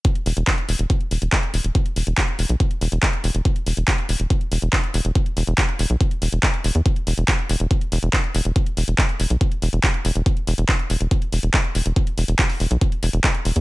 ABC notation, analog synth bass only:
X:1
M:4/4
L:1/16
Q:1/4=141
K:C
V:1 name="Analog synth bass" clef=bass
z2 E,,, E,,, z2 E,,, E,,, z2 E,,, E,,, z2 E,,, E,,, | z2 E,,, E,,, z2 E,,, B,,, z2 E,,, E,,, z2 E,,, E,,, | z2 E,,, E,,, z2 E,,, E,,, z2 E,,, E,,, z2 E,,, E,,, | z2 E,,, E,,, z2 E,,, B,,, z2 E,,, E,,, z2 E,,, E,, |
z2 E,,, E,,, z2 E,,, E,,, z2 E,,, E,,, z2 E,,, E,,, | z2 E,,, E,,, z2 E,,, B,,, z2 E,,, E,,, z2 E,,, E,,, | z2 E,,, E,,, z2 E,,, E,,, z2 E,,, E,,, z2 E,,, E,,, | z2 E,,, E,,, z2 E,,, B,,, z2 E,,, E,,, z2 E,,, E,, |]